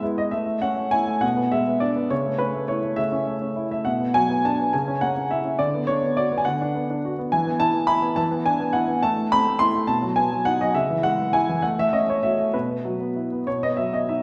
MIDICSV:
0, 0, Header, 1, 2, 480
1, 0, Start_track
1, 0, Tempo, 588235
1, 277, Time_signature, 6, 3, 24, 8
1, 3624, Tempo, 574163
1, 9384, Tempo, 615385
1, 11643, End_track
2, 0, Start_track
2, 0, Title_t, "Grand piano"
2, 0, Program_c, 0, 0
2, 21, Note_on_c, 0, 56, 50
2, 21, Note_on_c, 0, 59, 51
2, 29, Note_on_c, 0, 64, 48
2, 147, Note_on_c, 0, 75, 74
2, 249, Note_off_c, 0, 56, 0
2, 249, Note_off_c, 0, 59, 0
2, 254, Note_off_c, 0, 64, 0
2, 255, Note_on_c, 0, 76, 65
2, 261, Note_on_c, 0, 57, 49
2, 274, Note_off_c, 0, 75, 0
2, 365, Note_off_c, 0, 57, 0
2, 377, Note_on_c, 0, 57, 42
2, 457, Control_c, 0, 64, 127
2, 502, Note_on_c, 0, 78, 82
2, 507, Note_on_c, 0, 61, 51
2, 509, Note_off_c, 0, 76, 0
2, 582, Note_off_c, 0, 57, 0
2, 625, Note_on_c, 0, 57, 41
2, 706, Note_off_c, 0, 61, 0
2, 744, Note_on_c, 0, 80, 86
2, 750, Note_on_c, 0, 64, 46
2, 752, Note_off_c, 0, 78, 0
2, 825, Note_off_c, 0, 57, 0
2, 875, Note_on_c, 0, 57, 43
2, 948, Note_off_c, 0, 64, 0
2, 987, Note_on_c, 0, 78, 81
2, 993, Note_off_c, 0, 80, 0
2, 995, Note_on_c, 0, 47, 60
2, 998, Note_off_c, 0, 57, 0
2, 1013, Control_c, 0, 64, 0
2, 1113, Note_on_c, 0, 59, 50
2, 1142, Control_c, 0, 64, 127
2, 1235, Note_off_c, 0, 78, 0
2, 1237, Note_on_c, 0, 76, 74
2, 1238, Note_on_c, 0, 56, 42
2, 1310, Note_off_c, 0, 59, 0
2, 1364, Note_on_c, 0, 59, 39
2, 1433, Note_off_c, 0, 56, 0
2, 1471, Note_on_c, 0, 74, 69
2, 1481, Note_off_c, 0, 76, 0
2, 1481, Note_on_c, 0, 62, 44
2, 1557, Note_off_c, 0, 59, 0
2, 1597, Note_on_c, 0, 59, 39
2, 1675, Note_off_c, 0, 62, 0
2, 1699, Note_off_c, 0, 47, 0
2, 1717, Note_on_c, 0, 49, 53
2, 1717, Note_on_c, 0, 73, 73
2, 1718, Note_off_c, 0, 74, 0
2, 1720, Note_off_c, 0, 59, 0
2, 1735, Control_c, 0, 64, 0
2, 1842, Note_on_c, 0, 57, 39
2, 1872, Control_c, 0, 64, 127
2, 1946, Note_on_c, 0, 71, 75
2, 1954, Note_on_c, 0, 61, 45
2, 1958, Note_off_c, 0, 73, 0
2, 2033, Note_off_c, 0, 57, 0
2, 2075, Note_on_c, 0, 57, 41
2, 2148, Note_off_c, 0, 61, 0
2, 2188, Note_on_c, 0, 73, 69
2, 2191, Note_off_c, 0, 71, 0
2, 2191, Note_on_c, 0, 64, 46
2, 2268, Note_off_c, 0, 57, 0
2, 2307, Note_on_c, 0, 57, 42
2, 2385, Note_off_c, 0, 64, 0
2, 2410, Note_off_c, 0, 49, 0
2, 2418, Note_on_c, 0, 76, 75
2, 2423, Note_on_c, 0, 49, 45
2, 2430, Note_off_c, 0, 73, 0
2, 2447, Control_c, 0, 64, 0
2, 2501, Note_off_c, 0, 57, 0
2, 2546, Note_on_c, 0, 61, 53
2, 2665, Note_on_c, 0, 57, 43
2, 2739, Note_off_c, 0, 61, 0
2, 2785, Note_on_c, 0, 61, 40
2, 2858, Note_off_c, 0, 57, 0
2, 2906, Note_on_c, 0, 64, 48
2, 2977, Note_off_c, 0, 61, 0
2, 3019, Note_off_c, 0, 76, 0
2, 3026, Note_on_c, 0, 57, 40
2, 3031, Note_on_c, 0, 76, 62
2, 3098, Note_off_c, 0, 64, 0
2, 3118, Note_off_c, 0, 49, 0
2, 3139, Note_on_c, 0, 78, 68
2, 3146, Note_off_c, 0, 57, 0
2, 3147, Note_on_c, 0, 47, 51
2, 3148, Note_off_c, 0, 76, 0
2, 3267, Note_on_c, 0, 59, 41
2, 3279, Control_c, 0, 64, 127
2, 3380, Note_on_c, 0, 80, 89
2, 3382, Note_off_c, 0, 78, 0
2, 3387, Note_on_c, 0, 54, 51
2, 3458, Note_off_c, 0, 59, 0
2, 3506, Note_on_c, 0, 59, 41
2, 3577, Note_off_c, 0, 54, 0
2, 3621, Note_off_c, 0, 80, 0
2, 3629, Note_on_c, 0, 62, 43
2, 3632, Note_on_c, 0, 81, 72
2, 3697, Note_off_c, 0, 59, 0
2, 3756, Note_on_c, 0, 59, 43
2, 3820, Note_off_c, 0, 62, 0
2, 3843, Note_off_c, 0, 47, 0
2, 3867, Note_on_c, 0, 80, 71
2, 3869, Note_off_c, 0, 81, 0
2, 3870, Note_off_c, 0, 59, 0
2, 3871, Note_on_c, 0, 49, 53
2, 3877, Control_c, 0, 64, 0
2, 3988, Note_on_c, 0, 61, 51
2, 4021, Control_c, 0, 64, 127
2, 4101, Note_on_c, 0, 78, 80
2, 4105, Note_off_c, 0, 80, 0
2, 4108, Note_on_c, 0, 58, 44
2, 4178, Note_off_c, 0, 61, 0
2, 4225, Note_on_c, 0, 61, 39
2, 4298, Note_off_c, 0, 58, 0
2, 4343, Note_off_c, 0, 78, 0
2, 4347, Note_on_c, 0, 76, 68
2, 4354, Note_on_c, 0, 64, 41
2, 4417, Note_off_c, 0, 61, 0
2, 4465, Note_on_c, 0, 61, 36
2, 4541, Note_off_c, 0, 64, 0
2, 4566, Note_off_c, 0, 49, 0
2, 4582, Note_on_c, 0, 74, 76
2, 4584, Note_off_c, 0, 61, 0
2, 4585, Note_on_c, 0, 50, 54
2, 4586, Note_off_c, 0, 76, 0
2, 4591, Control_c, 0, 64, 0
2, 4712, Note_on_c, 0, 59, 43
2, 4765, Control_c, 0, 64, 127
2, 4818, Note_on_c, 0, 73, 85
2, 4823, Note_off_c, 0, 74, 0
2, 4827, Note_on_c, 0, 62, 47
2, 4900, Note_off_c, 0, 59, 0
2, 4949, Note_on_c, 0, 59, 46
2, 5018, Note_off_c, 0, 62, 0
2, 5062, Note_off_c, 0, 73, 0
2, 5067, Note_on_c, 0, 74, 75
2, 5070, Note_on_c, 0, 66, 44
2, 5139, Note_off_c, 0, 59, 0
2, 5192, Note_on_c, 0, 59, 45
2, 5242, Note_on_c, 0, 80, 68
2, 5249, Note_off_c, 0, 74, 0
2, 5259, Note_off_c, 0, 66, 0
2, 5300, Note_off_c, 0, 50, 0
2, 5301, Note_off_c, 0, 80, 0
2, 5302, Note_on_c, 0, 78, 80
2, 5312, Control_c, 0, 64, 0
2, 5313, Note_on_c, 0, 50, 49
2, 5380, Note_off_c, 0, 59, 0
2, 5441, Note_on_c, 0, 62, 53
2, 5554, Note_on_c, 0, 59, 44
2, 5624, Note_off_c, 0, 62, 0
2, 5681, Note_on_c, 0, 62, 43
2, 5741, Note_off_c, 0, 59, 0
2, 5806, Note_on_c, 0, 66, 46
2, 5864, Note_off_c, 0, 62, 0
2, 5902, Note_off_c, 0, 78, 0
2, 5920, Note_on_c, 0, 59, 44
2, 5986, Note_off_c, 0, 66, 0
2, 6005, Note_off_c, 0, 50, 0
2, 6031, Note_off_c, 0, 59, 0
2, 6031, Note_on_c, 0, 80, 77
2, 6039, Note_on_c, 0, 52, 57
2, 6154, Note_on_c, 0, 59, 51
2, 6156, Control_c, 0, 64, 127
2, 6262, Note_on_c, 0, 81, 95
2, 6263, Note_off_c, 0, 80, 0
2, 6264, Note_on_c, 0, 64, 55
2, 6336, Note_off_c, 0, 59, 0
2, 6376, Note_on_c, 0, 59, 41
2, 6451, Note_off_c, 0, 64, 0
2, 6490, Note_on_c, 0, 83, 88
2, 6495, Note_on_c, 0, 64, 51
2, 6497, Note_off_c, 0, 81, 0
2, 6566, Note_off_c, 0, 59, 0
2, 6618, Note_on_c, 0, 59, 48
2, 6686, Note_off_c, 0, 64, 0
2, 6721, Note_off_c, 0, 52, 0
2, 6731, Note_off_c, 0, 83, 0
2, 6733, Note_on_c, 0, 81, 82
2, 6736, Note_off_c, 0, 59, 0
2, 6742, Note_on_c, 0, 52, 58
2, 6745, Control_c, 0, 64, 0
2, 6861, Note_on_c, 0, 59, 54
2, 6918, Control_c, 0, 64, 127
2, 6972, Note_off_c, 0, 81, 0
2, 6980, Note_on_c, 0, 80, 84
2, 6984, Note_on_c, 0, 62, 45
2, 7049, Note_off_c, 0, 59, 0
2, 7098, Note_on_c, 0, 59, 46
2, 7170, Note_off_c, 0, 62, 0
2, 7208, Note_on_c, 0, 78, 78
2, 7216, Note_off_c, 0, 80, 0
2, 7216, Note_on_c, 0, 64, 51
2, 7287, Note_off_c, 0, 59, 0
2, 7331, Note_on_c, 0, 59, 41
2, 7406, Note_off_c, 0, 64, 0
2, 7435, Note_off_c, 0, 52, 0
2, 7450, Note_off_c, 0, 78, 0
2, 7452, Note_off_c, 0, 59, 0
2, 7456, Note_on_c, 0, 81, 86
2, 7459, Control_c, 0, 64, 0
2, 7463, Note_on_c, 0, 57, 58
2, 7568, Note_off_c, 0, 57, 0
2, 7581, Note_on_c, 0, 57, 44
2, 7635, Control_c, 0, 64, 127
2, 7694, Note_off_c, 0, 81, 0
2, 7702, Note_on_c, 0, 83, 101
2, 7706, Note_on_c, 0, 60, 50
2, 7768, Note_off_c, 0, 57, 0
2, 7826, Note_on_c, 0, 57, 51
2, 7890, Note_off_c, 0, 60, 0
2, 7929, Note_on_c, 0, 84, 95
2, 7934, Note_on_c, 0, 64, 47
2, 7936, Note_off_c, 0, 83, 0
2, 8009, Note_off_c, 0, 57, 0
2, 8061, Note_on_c, 0, 57, 50
2, 8123, Note_off_c, 0, 64, 0
2, 8166, Note_on_c, 0, 81, 76
2, 8168, Note_off_c, 0, 84, 0
2, 8170, Note_on_c, 0, 47, 55
2, 8175, Note_off_c, 0, 57, 0
2, 8176, Control_c, 0, 64, 0
2, 8288, Note_on_c, 0, 54, 53
2, 8317, Control_c, 0, 64, 127
2, 8404, Note_on_c, 0, 80, 81
2, 8407, Note_off_c, 0, 81, 0
2, 8407, Note_on_c, 0, 59, 47
2, 8481, Note_off_c, 0, 54, 0
2, 8535, Note_on_c, 0, 54, 45
2, 8601, Note_off_c, 0, 59, 0
2, 8647, Note_off_c, 0, 80, 0
2, 8650, Note_on_c, 0, 78, 89
2, 8659, Note_on_c, 0, 63, 44
2, 8725, Note_off_c, 0, 54, 0
2, 8770, Note_off_c, 0, 78, 0
2, 8779, Note_on_c, 0, 54, 44
2, 8781, Note_on_c, 0, 75, 71
2, 8848, Note_off_c, 0, 63, 0
2, 8870, Note_off_c, 0, 47, 0
2, 8894, Note_on_c, 0, 76, 78
2, 8896, Note_off_c, 0, 54, 0
2, 8897, Note_off_c, 0, 75, 0
2, 8897, Note_on_c, 0, 49, 51
2, 8899, Control_c, 0, 64, 0
2, 9025, Note_on_c, 0, 52, 48
2, 9064, Control_c, 0, 64, 127
2, 9135, Note_on_c, 0, 78, 91
2, 9137, Note_off_c, 0, 76, 0
2, 9141, Note_on_c, 0, 56, 51
2, 9215, Note_off_c, 0, 52, 0
2, 9270, Note_on_c, 0, 52, 43
2, 9335, Note_off_c, 0, 56, 0
2, 9382, Note_off_c, 0, 78, 0
2, 9384, Note_on_c, 0, 80, 84
2, 9389, Note_on_c, 0, 64, 45
2, 9457, Note_off_c, 0, 52, 0
2, 9509, Note_on_c, 0, 52, 49
2, 9571, Note_off_c, 0, 64, 0
2, 9596, Note_off_c, 0, 49, 0
2, 9612, Note_on_c, 0, 78, 74
2, 9615, Note_off_c, 0, 80, 0
2, 9620, Note_off_c, 0, 52, 0
2, 9620, Note_on_c, 0, 57, 55
2, 9625, Control_c, 0, 64, 0
2, 9728, Note_off_c, 0, 57, 0
2, 9730, Note_off_c, 0, 78, 0
2, 9740, Note_on_c, 0, 57, 48
2, 9745, Note_on_c, 0, 76, 85
2, 9785, Control_c, 0, 64, 127
2, 9851, Note_on_c, 0, 61, 49
2, 9851, Note_on_c, 0, 75, 75
2, 9855, Note_off_c, 0, 76, 0
2, 9923, Note_off_c, 0, 57, 0
2, 9967, Note_off_c, 0, 75, 0
2, 9976, Note_on_c, 0, 57, 41
2, 9980, Note_on_c, 0, 73, 68
2, 10039, Note_off_c, 0, 61, 0
2, 10085, Note_on_c, 0, 76, 69
2, 10092, Note_off_c, 0, 73, 0
2, 10092, Note_on_c, 0, 66, 41
2, 10162, Note_off_c, 0, 57, 0
2, 10207, Note_on_c, 0, 57, 39
2, 10282, Note_off_c, 0, 66, 0
2, 10324, Note_on_c, 0, 71, 62
2, 10327, Note_off_c, 0, 76, 0
2, 10328, Note_off_c, 0, 57, 0
2, 10329, Note_on_c, 0, 47, 53
2, 10338, Control_c, 0, 64, 0
2, 10452, Note_on_c, 0, 59, 40
2, 10487, Control_c, 0, 64, 127
2, 10566, Note_on_c, 0, 54, 46
2, 10643, Note_off_c, 0, 59, 0
2, 10689, Note_on_c, 0, 59, 35
2, 10760, Note_off_c, 0, 54, 0
2, 10812, Note_on_c, 0, 64, 36
2, 10881, Note_off_c, 0, 59, 0
2, 10937, Note_on_c, 0, 59, 37
2, 11003, Note_off_c, 0, 64, 0
2, 11030, Note_off_c, 0, 47, 0
2, 11049, Note_off_c, 0, 71, 0
2, 11052, Note_on_c, 0, 73, 74
2, 11054, Note_off_c, 0, 59, 0
2, 11057, Note_on_c, 0, 47, 48
2, 11061, Control_c, 0, 64, 0
2, 11172, Note_off_c, 0, 73, 0
2, 11177, Note_on_c, 0, 59, 43
2, 11178, Note_on_c, 0, 75, 76
2, 11197, Control_c, 0, 64, 127
2, 11284, Note_on_c, 0, 76, 66
2, 11291, Note_on_c, 0, 54, 43
2, 11297, Note_off_c, 0, 75, 0
2, 11370, Note_off_c, 0, 59, 0
2, 11410, Note_on_c, 0, 59, 37
2, 11411, Note_off_c, 0, 76, 0
2, 11415, Note_on_c, 0, 75, 64
2, 11489, Note_off_c, 0, 54, 0
2, 11534, Note_on_c, 0, 76, 61
2, 11538, Note_on_c, 0, 63, 37
2, 11539, Note_off_c, 0, 75, 0
2, 11609, Note_off_c, 0, 59, 0
2, 11643, Note_off_c, 0, 47, 0
2, 11643, Note_off_c, 0, 63, 0
2, 11643, Note_off_c, 0, 76, 0
2, 11643, End_track
0, 0, End_of_file